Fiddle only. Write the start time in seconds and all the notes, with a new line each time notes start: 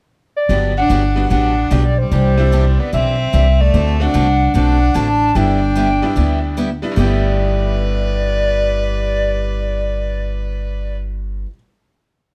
0.77 D4
1.31 D4
1.73 G3
1.99 G3
2.80 B3
2.95 C4
3.61 A3
4.02 D4
4.56 D4
4.96 D4
5.36 D4
6.97 B4